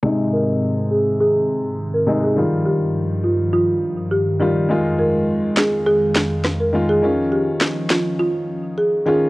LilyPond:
<<
  \new Staff \with { instrumentName = "Marimba" } { \time 4/4 \key aes \major \tempo 4 = 103 r8 bes'16 r8. aes'16 r16 aes'8. r8 bes'16 r16 aes'16 | r8 g'16 r8. f'16 r16 f'8. r16 g'16 r16 g'16 r16 | r8 bes'16 r8. aes'16 r16 aes'8. r8 bes'16 r16 aes'16 | r8 g'16 r8. f'16 r16 f'8. r16 aes'16 r16 aes'16 r16 | }
  \new Staff \with { instrumentName = "Grand piano" } { \clef bass \time 4/4 \key aes \major <c aes ees'>2 r4. <c aes ees'>8 | <ees g f'>2 r4. <ees g f'>8 | <ees aes f'>2 r4. <ees aes f'>8 | <ees des' f'>2 r4. <ees des' f'>8 | }
  \new Staff \with { instrumentName = "Analog synth pad" } { \clef bass \time 4/4 \key aes \major << { <aes, c'>1 | <g, f>1 | <f, aes>1 | des'1 | } \\ { ees1~ | ees1~ | ees1 | f1 | } >> }
  \new DrumStaff \with { instrumentName = "Drums" } \drummode { \time 4/4 r4 r4 r4 r4 | r4 r4 r4 r4 | r4 r8 <hc sn>8 r8 <hc sn>8 <ss sn>4 | r4 <hc ss sn>8 <hc sn>8 r4 r4 | }
>>